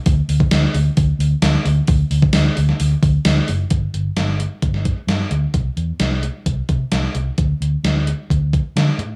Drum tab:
HH |o-o-o-o-o-o-o-o-|o-o-o-o-o-o-o-o-|x-x-x-x-x-x-x-x-|x-x-x-x-x-x-x-x-|
SD |----o-------o---|----o--o----o---|----o----o--o---|----o-------o---|
BD |o--o----o-------|o--o------o-----|o-------o-o-----|o-------o-o-----|

HH |x-x-x-x-x-x-x-x-|
SD |----o-------o---|
BD |o-------o-o-----|